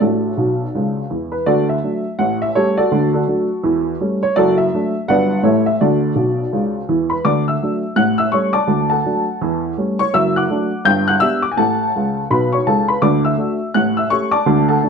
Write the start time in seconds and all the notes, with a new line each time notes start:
0.00 A1 A2 D4 F#4 A4
0.38 B1 B2
0.75 C#2 C#3
1.10 E2 E3
1.32 B4
1.46 D2 D3 F#4 A4 D5
1.69 E5
1.83 F#3 A3 D4
2.19 A1 A2 F#5
2.42 E5
2.55 G3 A3 C#4 G4 A4 C#5
2.77 F#4 A4 D5
2.91 D2 D3
3.13 D4 F#4 A4
3.27 F#3 A3 D4
3.63 E2 E3
4.01 G3 A3 C#4
4.23 C#5
4.36 F#1 F#2 F#4 A4 D5
4.58 E5
4.74 F#3 A3 D4
5.08 G1 G2 F#3 B3 D4 B4 D5 F#5
5.43 A1 A2 E3 A3 E4 A4 C#5
5.66 E5
5.81 D2 D3 F#4 A4 D5
6.15 B1 B2
6.52 C#2 C#3
6.89 E2 E3
7.10 B4 B5
7.25 D2 D3 D5 D6
7.48 E5 E6
7.62 F#3 A3 D4
7.96 A1 A2 F#5 F#6
8.18 E5 E6
8.32 G3 A3 C#4 C#5 C#6
8.53 D5 A5 D6
8.67 D2 D3
8.90 A4 F#5 A5
9.04 F#3 A3 D4
9.41 E2 E3
9.78 G3 A3 C#4
9.99 C#5 C#6
10.14 F#1 F#2 E5 E6
10.36 F#5 D6 F#6
10.49 F#3 A3 D4
10.85 G1 G2 G5 G6
11.08 F#5 F#6
11.20 B3 D4 G4 E5 E6
11.42 D6
11.51 G#5
11.57 A1 A2 A4 F#5 A5
11.96 C#2 C#3
12.30 B1 B2 B4 B5
12.53 C#5 C#6
12.67 C#2 C#3 A4 A5
12.88 B4 B5
13.02 D2 D3 D5 D6
13.25 E5 E6
13.38 A3 D4 F#4
13.74 A1 A2 F#5 F#6
13.97 E5 E6
14.10 A3 C#4 G4 C#5 C#6
14.31 D5 A5 D6
14.46 D2 D3
14.69 A4 F#5 A5
14.83 A3 D4 F#4